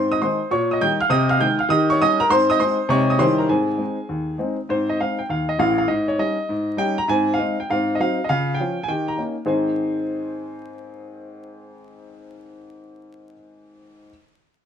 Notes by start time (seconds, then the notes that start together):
Already playing: G#2 C4 C5 C6
0.11 D#5 D#6
0.22 D#3 G#3 D#4 C5 C6
0.51 A#2 C#5 C#6
0.71 D#5 D#6
0.81 D#3 G3 D#4 G5 G6
1.01 F5 F6
1.10 C3 D#5 D#6
1.29 F5 F6
1.40 D#3 G#3 D#4 G5 G6
1.59 F5 F6
1.69 D#3 G4 D#5 D#6
1.90 C#5 C#6
2.00 G3 C#4 D#4 D#5 D#6
2.20 A#4 A#5
2.29 G#2 C4 C5 C6
2.50 D#5 D#6
2.60 G#3 C4 D#4 C5 C6
2.89 C3 G#3 C4 D#4 C#5 C#6
3.10 D#5 D#6
3.19 D#3 G3 C#4 E4 G4 C5 C6
3.38 A#4 A#5
3.49 G#2 C4 G#4 G#5
3.78 G#3 C4 D#4
4.09 D#2
4.38 G#3 C4 D#4
4.69 G#2 C4 C5
4.89 D#5
5.00 G#3 C4 D#4 F5
5.19 G5
5.29 D#2 F5
5.49 D#5
5.59 A1 A2 F5
5.78 F5
5.88 G#2 D#5
6.08 C#5
6.18 G3 C#4 D#4 D#5
6.49 G#2
6.77 G3 C#4 D#4 G5
6.98 A#5
7.08 G#2 C4 G#5
7.34 F5
7.38 G#3 C4 D#4
7.60 G5
7.70 G#2 C4 F5
7.95 D#5
8.00 F#3 C4 D#4 F5
8.24 D#5
8.29 C#3 F4 F5
8.54 G5
8.60 F3 C#4 F4
8.83 G#5
8.88 D#3 G4 G5
9.08 A#5
9.18 A#3 C#4 D#4
9.45 G#2 D#3 C4 D#4 G#4 C5 G#5